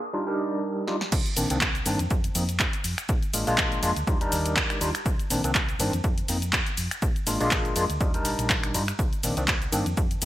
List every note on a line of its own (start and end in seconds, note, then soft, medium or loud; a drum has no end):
0.13 0.24 G3 medium
0.13 0.24 D4 medium
0.13 0.24 D#4 medium
0.13 0.24 F4 medium
0.26 0.84 G3 medium
0.26 0.85 D4 medium
0.26 0.85 D#4 medium
0.26 0.85 A#4 medium
0.87 0.95 G3 medium
0.87 0.95 D4 medium
0.87 0.95 D#4 medium
0.87 0.95 F4 medium
0.87 snare medium
1.01 snare medium
1.12 1.21 C2 loud
1.12 kick loud
1.12 ride medium
1.12 crash loud
1.12 shaker soft
1.26 closed hi-hat soft
1.26 shaker soft
1.36 1.46 A#1 medium
1.36 1.47 D#3 medium
1.36 1.47 A#3 medium
1.36 1.47 C4 medium
1.36 1.47 D4 medium
1.36 open hi-hat loud
1.36 ride medium
1.36 shaker medium
1.50 1.80 C2 medium
1.50 1.56 D#3 medium
1.50 1.56 A#3 medium
1.50 1.56 C4 medium
1.50 1.57 D4 medium
1.50 closed hi-hat medium
1.50 shaker soft
1.61 kick loud
1.61 clap loud
1.61 ride medium
1.61 shaker soft
1.75 closed hi-hat soft
1.75 shaker soft
1.86 1.95 G2 medium
1.86 1.98 D#3 loud
1.86 1.98 A#3 medium
1.86 1.98 C4 medium
1.86 1.98 D4 loud
1.86 open hi-hat loud
1.86 ride medium
1.86 shaker medium
1.99 2.07 F2 medium
1.99 closed hi-hat medium
1.99 shaker soft
2.10 kick loud
2.10 ride soft
2.10 shaker soft
2.24 closed hi-hat medium
2.24 shaker soft
2.35 2.66 F2 medium
2.35 2.42 F3 medium
2.35 2.43 A#3 medium
2.35 2.43 C4 medium
2.35 2.43 D#4 medium
2.35 open hi-hat loud
2.35 ride medium
2.35 shaker medium
2.49 closed hi-hat medium
2.49 shaker soft
2.60 kick loud
2.60 clap loud
2.60 ride medium
2.60 shaker soft
2.73 closed hi-hat medium
2.73 shaker soft
2.84 2.93 F2 medium
2.84 open hi-hat medium
2.84 ride medium
2.84 shaker medium
2.98 finger snap medium
2.98 closed hi-hat medium
2.98 shaker soft
3.09 3.18 A#1 loud
3.09 kick loud
3.09 ride medium
3.09 shaker soft
3.23 closed hi-hat soft
3.23 shaker soft
3.34 3.42 G#1 medium
3.34 3.44 G#3 medium
3.34 3.44 A#3 medium
3.34 3.44 D4 medium
3.34 3.44 F4 medium
3.34 open hi-hat loud
3.34 ride medium
3.34 shaker medium
3.47 3.77 A#1 medium
3.47 3.80 G#3 loud
3.47 3.80 A#3 medium
3.47 3.80 D4 medium
3.47 3.80 F4 loud
3.47 open hi-hat medium
3.47 shaker soft
3.58 kick loud
3.58 clap loud
3.58 ride medium
3.58 shaker soft
3.72 closed hi-hat soft
3.72 shaker soft
3.82 3.92 F2 medium
3.82 3.90 G#3 medium
3.82 3.90 A#3 medium
3.82 3.90 D4 medium
3.82 3.90 F4 loud
3.82 open hi-hat loud
3.82 ride medium
3.82 shaker medium
3.96 4.03 D2 medium
3.96 closed hi-hat medium
3.96 shaker soft
4.07 4.24 D#2 medium
4.07 4.17 G3 medium
4.07 4.18 D4 medium
4.07 4.18 D#4 medium
4.07 4.18 F4 loud
4.07 kick loud
4.07 ride medium
4.07 shaker soft
4.21 4.78 G3 medium
4.21 4.79 D4 medium
4.21 4.79 D#4 medium
4.21 4.79 A#4 medium
4.21 closed hi-hat medium
4.21 shaker soft
4.32 4.62 D#2 medium
4.32 open hi-hat loud
4.32 ride medium
4.32 shaker medium
4.46 closed hi-hat medium
4.46 shaker soft
4.57 kick loud
4.57 clap loud
4.57 ride soft
4.57 shaker soft
4.70 finger snap medium
4.70 closed hi-hat medium
4.70 shaker soft
4.81 4.90 D#2 medium
4.81 4.88 G3 medium
4.81 4.88 D4 medium
4.81 4.89 D#4 medium
4.81 4.89 F4 loud
4.81 open hi-hat loud
4.81 ride medium
4.81 shaker medium
4.95 finger snap medium
4.95 closed hi-hat medium
4.95 shaker soft
5.06 5.14 C2 loud
5.06 kick loud
5.06 ride medium
5.06 shaker soft
5.19 closed hi-hat soft
5.19 shaker soft
5.30 5.39 A#1 medium
5.30 5.41 D#3 medium
5.30 5.41 A#3 medium
5.30 5.41 C4 medium
5.30 5.41 D4 medium
5.30 open hi-hat loud
5.30 ride medium
5.30 shaker medium
5.44 5.73 C2 medium
5.44 5.50 D#3 medium
5.44 5.50 A#3 medium
5.44 5.50 C4 medium
5.44 5.50 D4 loud
5.44 closed hi-hat medium
5.44 shaker soft
5.55 kick loud
5.55 clap loud
5.55 ride medium
5.55 shaker soft
5.69 closed hi-hat soft
5.69 shaker soft
5.79 5.88 G2 medium
5.79 5.91 D#3 medium
5.79 5.91 A#3 medium
5.79 5.91 C4 medium
5.79 5.92 D4 loud
5.79 open hi-hat loud
5.79 ride medium
5.79 shaker medium
5.93 6.00 F2 loud
5.93 closed hi-hat medium
5.93 shaker soft
6.04 6.21 F2 medium
6.04 kick loud
6.04 ride medium
6.04 shaker soft
6.18 closed hi-hat medium
6.18 shaker soft
6.28 6.59 F2 medium
6.28 6.36 F3 medium
6.28 6.36 A#3 medium
6.28 6.36 C4 medium
6.28 6.36 D#4 medium
6.28 open hi-hat loud
6.28 ride medium
6.28 shaker medium
6.42 closed hi-hat medium
6.42 shaker soft
6.53 kick loud
6.53 clap loud
6.53 ride medium
6.53 shaker soft
6.66 closed hi-hat medium
6.66 shaker soft
6.77 6.87 F2 medium
6.77 open hi-hat loud
6.77 ride medium
6.77 shaker medium
6.91 finger snap medium
6.91 closed hi-hat medium
6.91 shaker soft
7.02 7.11 A#1 loud
7.02 kick loud
7.02 ride medium
7.02 shaker soft
7.16 closed hi-hat soft
7.16 shaker soft
7.27 7.36 G#1 medium
7.27 7.37 G#3 medium
7.27 7.37 A#3 medium
7.27 7.38 D4 medium
7.27 7.38 F4 loud
7.27 open hi-hat loud
7.27 ride medium
7.27 shaker medium
7.40 7.70 A#1 medium
7.40 7.73 G#3 loud
7.40 7.73 A#3 medium
7.40 7.74 D4 medium
7.40 7.74 F4 loud
7.40 open hi-hat medium
7.40 shaker soft
7.51 kick loud
7.51 clap loud
7.51 ride medium
7.51 shaker soft
7.65 closed hi-hat soft
7.65 shaker soft
7.76 7.85 F2 medium
7.76 7.83 G#3 medium
7.76 7.83 A#3 medium
7.76 7.84 D4 medium
7.76 7.84 F4 loud
7.76 open hi-hat loud
7.76 ride medium
7.76 shaker medium
7.90 7.97 D2 medium
7.90 closed hi-hat medium
7.90 shaker soft
8.00 8.11 G3 medium
8.00 8.11 D4 medium
8.00 8.11 D#4 medium
8.00 8.11 F4 loud
8.00 kick loud
8.00 ride medium
8.00 shaker soft
8.14 8.72 G3 medium
8.14 8.72 D4 medium
8.14 8.72 D#4 medium
8.14 8.72 A#4 medium
8.14 closed hi-hat medium
8.14 shaker soft
8.25 8.34 A#1 loud
8.25 open hi-hat loud
8.25 ride medium
8.25 shaker medium
8.39 8.76 A#1 medium
8.39 closed hi-hat medium
8.39 shaker soft
8.50 kick loud
8.50 clap loud
8.50 ride medium
8.50 shaker soft
8.64 finger snap medium
8.64 closed hi-hat soft
8.64 shaker soft
8.74 8.91 G2 medium
8.74 8.82 G3 medium
8.74 8.82 D4 medium
8.74 8.82 D#4 medium
8.74 8.82 F4 medium
8.74 open hi-hat loud
8.74 ride medium
8.74 shaker medium
8.88 finger snap medium
8.88 closed hi-hat medium
8.88 shaker soft
8.99 9.08 C2 loud
8.99 kick loud
8.99 ride medium
8.99 shaker soft
9.13 closed hi-hat soft
9.13 shaker soft
9.23 9.32 A#1 medium
9.23 9.34 D#3 medium
9.23 9.34 A#3 medium
9.23 9.34 C4 medium
9.23 9.34 D4 medium
9.23 open hi-hat loud
9.23 ride medium
9.23 shaker medium
9.37 9.67 C2 loud
9.37 9.43 D#3 medium
9.37 9.43 A#3 medium
9.37 9.43 C4 medium
9.37 9.43 D4 medium
9.37 closed hi-hat medium
9.37 shaker soft
9.48 kick loud
9.48 clap loud
9.48 ride medium
9.48 shaker soft
9.62 closed hi-hat soft
9.62 shaker soft
9.72 9.82 G2 loud
9.72 9.84 D#3 medium
9.72 9.84 A#3 medium
9.72 9.85 C4 medium
9.72 9.85 D4 loud
9.72 open hi-hat loud
9.72 ride medium
9.72 shaker medium
9.86 9.93 F2 medium
9.86 closed hi-hat medium
9.86 shaker soft
9.97 kick loud
9.97 ride medium
9.97 shaker soft
10.11 closed hi-hat medium
10.11 shaker soft
10.22 10.25 F2 medium
10.22 10.25 F3 medium
10.22 open hi-hat loud
10.22 ride medium
10.22 shaker medium